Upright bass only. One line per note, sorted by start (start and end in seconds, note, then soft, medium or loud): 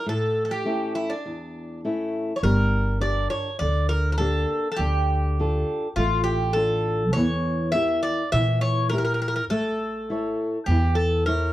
2.43 3.26 G1 medium
3.61 4.44 D2 medium
4.79 5.62 D2 medium
5.96 7.15 A1 loud
7.15 7.98 E2 medium
8.33 9.51 A#2 medium
9.51 10.33 A1 loud
10.68 11.53 E2 medium